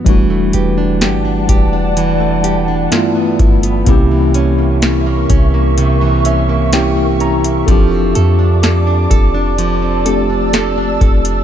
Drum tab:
HH |x-x-x-x-x-x-x-xx|x-x-x-x-x-x-x-xx|x-x-x-x-x-x-x-xx|
SD |----o-------o---|----o-------o---|----o-------o---|
BD |o-----o-------o-|o-----o---------|o-----o-------o-|